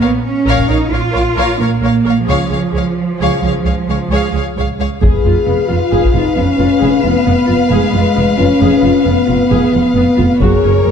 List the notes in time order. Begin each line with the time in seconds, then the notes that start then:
0.01 A#1 B3 A#4 C#5 F5
0.25 C#4
0.46 A#1 A#4 C#5 F5
0.58 taiko
0.68 A#1 D#4 A#4 C#5 F5
0.91 A#1 F4 A#4 C#5 F5
1.11 A#1 A#4 C#5
1.16 F5
1.36 A#1 A#4 C#5 F5
1.59 A#1 A#3 A#4 C#5 F5
1.81 A#1 A#4 C#5
1.86 F5
2.04 A#1 A#4 C#5
2.09 F5
2.26 C#2 F3 G#4 C#5 F5
2.50 C#2 G#4 C#5 F5
2.72 C#2 G#4 C#5
2.77 F5
3.19 C#2 G#4 C#5 F5
3.43 C#2 G#4 C#5 F5
3.64 C#2 G#4 C#5 F5
3.88 C#2 G#4 C#5 F5
4.10 C#2 G#4 C#5
4.15 F5
4.33 C#2 G#4 C#5
4.38 F5
4.56 C#2 G#4 C#5 F5
4.79 C#2 G#4 C#5 F5
5.01 F1 F2 G#4 B4 F5, taiko
5.24 F1 F2 F4
5.47 F1 F2 B3
5.69 F1 F2 F4
5.92 F1 F2 G#4
6.05 taiko
6.14 F1 F2 D#4 F4
6.37 F1 F2 B3 C#4
6.59 F1 F2 F4
6.81 F1 F2 G#4
7.04 F1 F2 B3 F4
7.26 F1 F2 B3
7.47 F1 F2 F4
7.70 F1 F2 G#3 G#4
7.92 F1 F2 F4
8.15 F1 F2 B3
8.37 F1 F2 C#4 F4
8.60 F1 F2 G#4
8.83 F1 F2 F4
9.05 F1 F2 B3
9.27 F1 F2 F4
9.51 F1 F2 G#4
9.73 F1 F2 F4
9.95 F1 F2 B3
10.17 F1 F2 F4
10.40 F#1 F#2 F#4 G#4 A#4 C#5, taiko
10.64 F#1 F#2 C#4
10.85 F#1 F#2 A#3